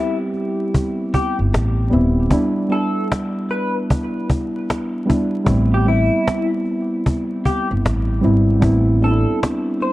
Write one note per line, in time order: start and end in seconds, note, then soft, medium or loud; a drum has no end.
0.00 1.90 G3 medium
0.00 1.91 B3 medium
0.00 1.92 C4 medium
0.00 0.17 E4 medium
0.00 1.93 E4 medium
0.00 0.66 G4 medium
0.34 cajon slap soft
0.74 cajon bass medium
1.14 1.36 G4 medium
1.14 cajon bass medium
1.39 1.51 G1 medium
1.53 1.88 A1 medium
1.53 cajon slap loud
1.90 2.28 D#1 loud
1.90 2.21 G3 medium
1.90 2.22 B3 medium
1.90 2.22 C4 medium
1.90 2.23 E4 medium
1.90 cajon slap soft
2.30 2.61 G3 medium
2.30 2.61 B3 medium
2.30 2.62 D4 medium
2.30 2.63 E4 medium
2.30 cajon bass loud
2.69 3.80 G3 medium
2.69 3.81 B3 medium
2.69 3.81 D4 medium
2.69 3.82 E4 medium
2.69 3.07 A4 medium
2.69 cajon slap soft
3.12 cajon slap loud
3.49 3.73 B4 medium
3.49 cajon slap soft
3.90 cajon bass loud
4.30 cajon bass medium
4.70 cajon slap loud
5.05 5.37 G3 medium
5.05 5.37 B3 medium
5.05 5.38 D4 medium
5.05 5.38 E4 medium
5.10 cajon bass medium
5.44 6.08 A1 loud
5.44 5.76 G3 medium
5.44 5.77 B3 medium
5.44 5.77 C4 medium
5.44 5.78 E4 medium
5.44 cajon bass loud
5.74 5.86 G4 medium
5.85 6.96 G3 medium
5.85 6.97 B3 medium
5.85 6.97 C4 medium
5.85 6.48 E4 medium
5.85 6.98 E4 medium
5.85 cajon slap soft
6.28 cajon slap loud
6.65 cajon slap soft
7.06 cajon bass medium
7.45 7.68 G4 medium
7.45 cajon bass medium
7.71 7.83 G1 medium
7.85 8.20 A1 medium
7.85 cajon slap loud
8.21 8.59 G#1 medium
8.21 8.52 G3 medium
8.21 8.53 B3 medium
8.21 8.54 C4 medium
8.21 8.54 E4 medium
8.21 cajon slap soft
8.60 9.24 A1 loud
8.60 8.92 G3 medium
8.60 8.92 B3 medium
8.60 8.93 C4 medium
8.60 8.93 E4 loud
8.60 cajon bass loud
9.01 9.93 G3 medium
9.01 9.93 B3 medium
9.01 9.93 C4 medium
9.01 9.12 D4 medium
9.01 9.39 A4 medium
9.01 cajon slap soft
9.11 9.93 E4 medium
9.43 cajon slap loud
9.81 9.93 C5 medium
9.81 cajon slap soft